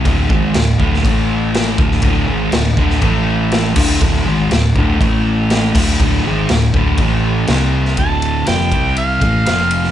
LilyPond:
<<
  \new Staff \with { instrumentName = "Harmonica" } { \time 4/4 \key d \minor \tempo 4 = 121 r1 | r1 | r1 | r1 |
a''4 g''4 f''2 | }
  \new Staff \with { instrumentName = "Distorted electric guitar" } { \clef bass \time 4/4 \key d \minor <d, a, d>8 <gis, ees gis>8 <d, a,>8 <d, a, d>8 <a, e a>4. <d, a, d>8 | <d, a, d>8 <gis, ees gis>8 <d, a,>8 <d, a, d>8 <a, e a>4. <d, a, d>8 | <d, a, d>8 <gis, ees gis>8 <d, a,>8 <d, a, d>8 <a, e a>4. <d, a, d>8 | <d, a, d>8 <gis, ees gis>8 <d, a,>8 <d, a, d>8 <a, e a>4 <c g c'>4 |
<d, a, d>4 <f, c f>8 <c g c'>4 <a, e a>8 <f, c f>4 | }
  \new Staff \with { instrumentName = "Fingered electric bass" } { \clef bass \time 4/4 \key d \minor d,,8 gis,,8 d,,8 d,,8 a,,4. d,,8 | d,,8 gis,,8 d,,8 d,,8 a,,4. d,,8 | d,,8 gis,,8 d,,8 d,,8 a,,4. d,,8 | d,,8 gis,,8 d,,8 d,,8 a,,4 c,4 |
d,,4 f,,8 c,4 a,,8 r4 | }
  \new DrumStaff \with { instrumentName = "Drums" } \drummode { \time 4/4 <cymc bd>8 bd8 <cymc sn>8 bd16 sn16 <cymc bd>4 <cymc sn>8 bd16 sn16 | <cymc bd>4 <cymc sn>8 bd16 sn16 <cymc bd>4 <cymc sn>8 <cymc bd>8 | <cymc bd>4 <cymc sn>8 bd8 <cymc bd>4 <cymc sn>8 <cymc bd>8 | <cymc bd>4 <cymc sn>8 bd8 <cymc bd>4 <cymc sn>8. sn16 |
<bd cymr>8 cymr8 <cymr sn>8 <bd cymr>8 cymr8 <bd cymr>8 <cymr sn>8 cymr16 sn16 | }
>>